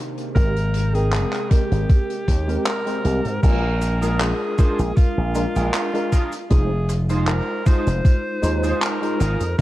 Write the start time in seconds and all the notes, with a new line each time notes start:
Already playing: C3 G#3 A#3 G5
0.17 closed hi-hat
0.35 G#1 G#3 C4 G4 A#4, kick, closed hi-hat
0.56 closed hi-hat
0.74 closed hi-hat
0.94 G#3 C4 G#4 A#4 G5, closed hi-hat
1.13 clap, closed hi-hat
1.33 clap, closed hi-hat
1.50 G#3 C4 G4 A#4, kick, closed hi-hat
1.71 G#1, closed hi-hat
1.89 kick, closed hi-hat
2.10 closed hi-hat
2.28 D#2, kick, closed hi-hat
2.47 G#3 C4 G4 A#4, closed hi-hat
2.66 A#4, clap, closed hi-hat
2.86 G#3 C4 G4 C5, closed hi-hat
3.04 C2 G#3 C4 G4 A#4, closed hi-hat
3.25 G#2, closed hi-hat
3.42 A#1 G#3 D4 F4 A#4, kick, closed hi-hat, crash, cabasa
3.81 muted clean electric guitar stroke, closed hi-hat, cabasa
4.01 G#3 D4 F4 G#4 A#4, closed hi-hat, cabasa
4.20 G#4, clap, closed hi-hat, cabasa
4.58 G#3 D4 F4 G#4 A#4 C5, kick, closed hi-hat, cabasa
4.79 A#1, closed hi-hat, cabasa
4.97 F4, kick, closed hi-hat, cabasa
5.18 A#1
5.34 G#3 D4 F4 A#4, muted clean electric guitar stroke, closed hi-hat, cabasa
5.56 A#1 D4 F4 G#4 A#4, closed hi-hat, cabasa
5.74 F4, clap, closed hi-hat, cabasa
5.93 G#3 D4 F4 A#4, closed hi-hat
6.12 D4 F4 G#4 A#4, kick, closed hi-hat, cabasa
6.32 closed hi-hat, cabasa
6.50 F1 G#3 D#4 F4 G#4 C5, kick, closed hi-hat, cabasa
6.89 muted clean electric guitar stroke, closed hi-hat, cabasa
7.09 G#3 D#4 F4 G#4 C5, closed hi-hat, cabasa
7.27 A#4, clap, closed hi-hat, cabasa
7.65 G#3 D#4 F4 G#4 C5, kick, closed hi-hat, cabasa
7.87 F1, closed hi-hat, cabasa
8.05 kick, closed hi-hat, cabasa
8.42 D#2 G#3 D#4 F4 C5, muted clean electric guitar stroke, closed hi-hat, cabasa
8.63 D#4 F4 G#4 C5, closed hi-hat, cabasa
8.82 A#4, clap, closed hi-hat, cabasa
9.01 G#3 D#4 F4 C5, closed hi-hat
9.20 G#1 D#4 F4 G#4 A#4, closed hi-hat, cabasa
9.40 F2, closed hi-hat, cabasa
9.58 A#3